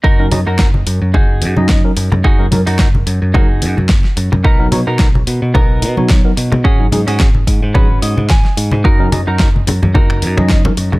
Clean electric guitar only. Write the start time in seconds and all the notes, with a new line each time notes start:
0.04 D#4 F#4 A#4
0.47 D#4 F#4 A#4
0.87 muted clean electric guitar stroke
1.14 D#4 F#4 G#4
1.97 muted clean electric guitar stroke
2.12 muted clean electric guitar stroke
2.24 D#4 F#4 G#4
2.66 D#4 F#4 A#4
3.06 muted clean electric guitar stroke
3.34 D#4 F#4 G#4
4.17 muted clean electric guitar stroke
4.32 muted clean electric guitar stroke
4.44 B3 D#4 A#4
4.87 B3 D#4 A#4
5.27 muted clean electric guitar stroke
5.54 B3 D#4 A#4
6.37 muted clean electric guitar stroke
6.52 muted clean electric guitar stroke
6.64 C#4 F#4 G#4
7.07 C#4 F#4 G#4
7.47 muted clean electric guitar stroke
7.74 C#4 F#4 B4
8.02 D#5
8.30 G#5
8.57 muted clean electric guitar stroke
8.72 muted clean electric guitar stroke
8.84 D#4 F#4 A#4
9.27 D#4 F#4 A#4
9.67 muted clean electric guitar stroke
9.94 D#4 F#4 A#4
10.77 muted clean electric guitar stroke
10.92 muted clean electric guitar stroke